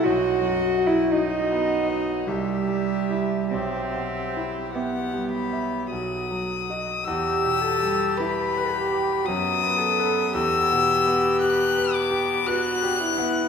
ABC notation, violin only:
X:1
M:3/4
L:1/8
Q:1/4=54
K:Em
V:1 name="Violin"
^d2 d2 e2 | e2 f b ^d'2 | e'2 b2 ^d'2 | e'2 f' d' f'2 |]